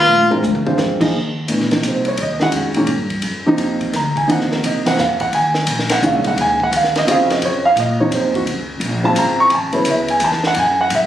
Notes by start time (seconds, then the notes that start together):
0.00 F4
0.07 A#1, high tom
0.21 high tom
0.31 G#3 C4 D4 F4 A#4, floor tom
0.43 D2, hi-hat pedal, high tom
0.55 floor tom
0.65 G#3 C4 D4 F4 C5, floor tom
0.78 F2, snare, hi-hat pedal
1.00 F3 A#3 D#4 G#4 D#5, kick, crash
1.13 D#2
1.48 A#1 B2 E3 A3 D4, hi-hat pedal, ride
1.60 snare
1.71 C3 F3 A#3 D#4, snare, ride
1.83 C2, hi-hat pedal, ride
1.88 C5
2.05 C#5, ride
2.17 D#2, ride
2.22 D#5
2.40 D#3 G#3 C#4 F#4 F#5, snare
2.52 F2, hi-hat pedal, ride
2.74 A#2 D#3 G#3 C#4, ride
2.87 G2, ride
3.10 kick, ride
3.22 F#2, ride
3.46 C3 F3 A#3 D#4
3.58 F2, hi-hat pedal, ride
3.81 kick, ride
3.93 D2 A#5, snare, hi-hat pedal, ride
4.16 G#5, kick, ride
4.27 D#2 C3 F3 A#3 D#4 F#5, ride
4.41 snare
4.52 A#4, snare
4.63 C2 D#5, hi-hat pedal, ride
4.86 C3 F3 A#3 C4 F#5, snare, ride
4.98 F2 F5, snare, hi-hat pedal
5.20 F#5, kick, ride
5.33 D#2 G#5, ride
5.54 snare
5.67 A#1, hi-hat pedal, ride
5.79 snare
5.89 F#5, snare, ride
6.02 C2 A#2 D#3 G#3 C#4, hi-hat pedal
6.06 F5
6.24 F#5, ride
6.36 C#2, ride
6.41 G#5
6.60 F#5, kick
6.72 D#2, hi-hat pedal, ride
6.76 F5
6.84 snare
6.96 D#5, snare, ride
7.07 F2 C#3 C4 F4 F#4 F5, hi-hat pedal, ride
7.30 D#5, snare, ride
7.42 F#2 C#5, ride
7.65 F5
7.76 A#2 D#5, hi-hat pedal, ride
8.00 C3 F3 A#3 D#4 C#5
8.11 F#2 C5, hi-hat pedal, ride
8.34 F#4, kick, ride
8.46 C#2, ride
8.80 A#1, ride
9.03 C#3 F#3 C4 F4 A5
9.15 G#1 A#5, hi-hat pedal, ride
9.40 C#6
9.50 A1 G#5, ride
9.54 A5
9.72 C#3 F#3 B3 E4 C#5, ride
9.85 C#2, hi-hat pedal, ride
9.90 E5
10.08 G#5, ride
10.20 E2, hi-hat pedal, ride
10.24 A5
10.32 snare
10.43 F#5, snare
10.55 F#2, ride
10.59 G#5
10.81 F#5
10.90 G#2, hi-hat pedal, ride
10.95 E5